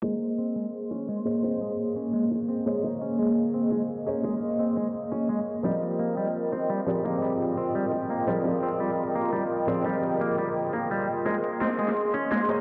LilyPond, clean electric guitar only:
\new Staff \with { instrumentName = "Clean electric guitar" } { \clef bass \time 4/4 \key f \phrygian \tempo 4 = 171 aes8 r8 c'8 aes8 r8 des'8 aes8 r8 | c'8 aes16 r8. des'8 aes16 r8. c'8 aes16 r16 | r8 des'8 aes16 r8. c'8 aes16 r8. des'8 | aes16 r8. c'8 aes16 r8. des'8 aes16 r8. |
g16 r8. bes8 g16 r8. c'8 g16 r8. | bes8 g16 r8. c'8 g16 r8. bes8 g16 r16 | r8 c'8 g16 r8. bes8 g16 r8. c'8 | g16 r8. bes8 g16 r8. bes8 g8 r8 |
aes8 r8 c'8 aes8 r8 des'8 aes8 r8 | }